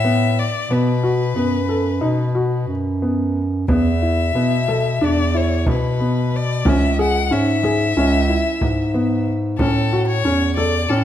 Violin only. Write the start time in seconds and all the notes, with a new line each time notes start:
Already playing: E5
0.39 D5
0.72 B4
3.71 E5
5.04 D5
5.37 C#5
5.70 B4
6.36 D5
6.69 E5
7.01 F#5
7.33 E5
9.58 A4
10.07 C#5
10.56 D5
10.89 A4